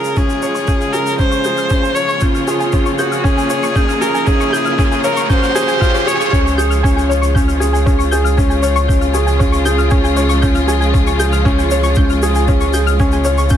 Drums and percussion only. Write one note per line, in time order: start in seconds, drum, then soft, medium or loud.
0.04 shaker soft
0.17 kick loud
0.17 shaker medium
0.30 shaker soft
0.42 shaker medium
0.55 shaker soft
0.67 kick loud
0.67 shaker medium
0.81 shaker soft
0.94 shaker medium
1.06 shaker soft
1.19 kick loud
1.19 shaker medium
1.32 shaker soft
1.44 shaker medium
1.57 shaker soft
1.70 kick loud
1.70 shaker soft
1.84 shaker soft
1.96 shaker medium
2.09 shaker soft
2.21 kick loud
2.21 shaker medium
2.35 shaker soft
2.48 shaker medium
2.60 shaker soft
2.73 kick loud
2.73 shaker medium
2.86 shaker soft
2.99 shaker medium
3.12 shaker soft
3.24 kick loud
3.24 shaker soft
3.38 shaker soft
3.50 shaker medium
3.63 shaker soft
3.76 kick loud
3.76 shaker medium
3.89 shaker soft
4.02 shaker medium
4.15 shaker medium
4.27 kick loud
4.27 shaker medium
4.41 shaker soft
4.54 shaker medium
4.65 shaker soft
4.79 kick loud
4.79 shaker medium
4.92 shaker soft
5.04 shaker medium
5.16 shaker medium
5.30 kick loud
5.30 shaker medium
5.43 shaker soft
5.56 shaker medium
5.68 shaker soft
5.81 kick loud
5.81 shaker medium
5.95 shaker soft
6.08 shaker medium
6.21 shaker medium
6.33 kick loud
6.33 shaker medium
6.47 shaker soft
6.59 shaker medium
6.71 shaker soft
6.84 kick loud
6.84 shaker medium
6.98 shaker soft
7.11 shaker medium
7.23 shaker soft
7.35 kick loud
7.35 shaker medium
7.49 shaker soft
7.62 shaker medium
7.75 shaker soft
7.87 kick loud
7.87 shaker soft
8.00 shaker soft
8.12 shaker medium
8.26 shaker soft
8.38 kick loud
8.38 shaker medium
8.51 shaker soft
8.63 shaker medium
8.76 shaker soft
8.89 kick loud
8.89 shaker medium
9.02 shaker soft
9.14 shaker medium
9.27 shaker soft
9.40 kick loud
9.40 shaker medium
9.53 shaker soft
9.66 shaker medium
9.78 shaker soft
9.91 kick loud
9.91 shaker medium
10.04 shaker soft
10.17 shaker medium
10.30 shaker soft
10.43 kick loud
10.43 shaker medium
10.55 shaker soft
10.69 shaker medium
10.82 shaker soft
10.94 kick loud
10.94 shaker medium
11.07 shaker soft
11.20 shaker loud
11.33 shaker medium
11.46 kick loud
11.46 shaker medium
11.59 shaker soft
11.71 shaker loud
11.84 shaker soft
11.95 kick loud
11.95 shaker medium
12.10 shaker soft
12.23 shaker loud
12.35 shaker soft
12.48 kick loud
12.48 shaker medium
12.61 shaker soft
12.73 shaker medium
12.87 shaker soft
13.00 kick loud
13.00 shaker medium
13.12 shaker soft
13.25 shaker medium
13.38 shaker medium
13.49 kick loud
13.49 shaker medium